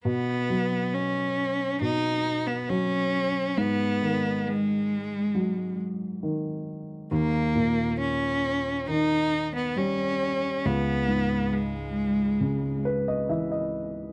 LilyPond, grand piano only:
<<
  \new Staff \with { instrumentName = "Grand piano" } { \time 4/4 \key b \major \tempo 4 = 68 r1 | r1 | r1 | r2 r8 b'16 dis''16 e''16 dis''8. | }
  \new Staff \with { instrumentName = "Grand piano" } { \clef bass \time 4/4 \key b \major b,8 fis4. b,4 fis4 | gis,8 dis4. fis4 dis4 | dis,8 ais,4. dis4 g4 | cis,8 gis,4. cis4 e4 | }
>>